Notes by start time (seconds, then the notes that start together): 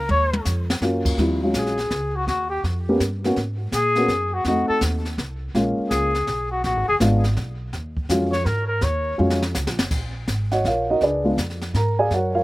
0.09 D#2 C#5, high tom
0.33 high tom
0.45 F2, snare, hi-hat pedal
0.70 snare
0.81 F#2 F#3 A#3 C#4 F4, snare
1.05 kick, crash
1.18 D#2 F3 G3 C4 E4, brush sweep, kick, snare
1.43 F#3 G#3 C#4 F4
1.54 A#1 G#4, kick, snare, hi-hat pedal
1.66 snare
1.78 snare
1.91 C#2, kick, snare
2.16 F#4
2.27 D#2 F#4, brush sweep, kick, snare
2.50 G4
2.63 F2, kick, snare
2.89 A#3 B3 C#4 G4
3.00 G2, kick, snare, hi-hat pedal
3.24 A#3 B3 C#4 F#4, snare
3.36 G#2, brush sweep, kick, snare
3.72 A#2 G#4, kick, snare, hi-hat pedal
3.95 A#3 B3 C#4 F#4, snare
4.08 F#2, kick, snare
4.34 F#4
4.44 F2 A3 C4 D#4 F#4, brush sweep, kick, snare
4.68 A4, muted upright bass stroke
4.81 D#2, kick, snare, hi-hat pedal
5.05 snare
5.18 C2, kick, snare
5.54 A#1 G#3 A#3 C#4 F4, brush sweep, kick, snare
5.78 muted upright bass stroke
5.90 C#2 G#4, kick, snare, hi-hat pedal
6.15 snare
6.27 B1, kick, snare
6.51 F#4
6.64 A#1 F#4, brush sweep, kick, snare
6.77 G#1
6.88 F1 G#4
7.00 G#1 G#3 B3 D4 F4, kick, snare, hi-hat pedal
7.24 snare
7.37 B1, kick, snare
7.73 D#2, brush sweep, kick, snare
7.97 kick
8.09 F2 F#3 G#3 C#4 F4, kick, snare, hi-hat pedal
8.32 C#5, snare
8.45 G#2 A#4, kick, snare
8.67 A#4
8.81 D#2 C#5, brush sweep, kick, snare
9.18 F2 F#3 G#3 C#4 F4
9.30 snare
9.42 snare
9.55 C#2, snare, hi-hat pedal
9.67 A#1, snare
9.79 F#1, snare
9.91 A#1, brush sweep, kick, snare, crash
10.28 G#1, kick, snare, hi-hat pedal
10.51 F#4 C#5 D#5 F#5, snare
10.64 A#1 F4 A#4 C#5 F5, kick, snare
10.90 D#4 F#4 A#4 D#5
11.01 C#2 D4 G#4 B4 D5, brush sweep, kick, snare
11.24 G#3 B3 D4 F4
11.37 F2, kick, snare, hi-hat pedal
11.50 snare
11.61 snare
11.74 G#2 A#4 A#5, kick, snare
11.99 G#4 D5 F5 G#5
12.10 F#2 A#4 F#5, brush sweep, kick, snare
12.14 F#4 C#5
12.35 F4 A#4 C#5 F5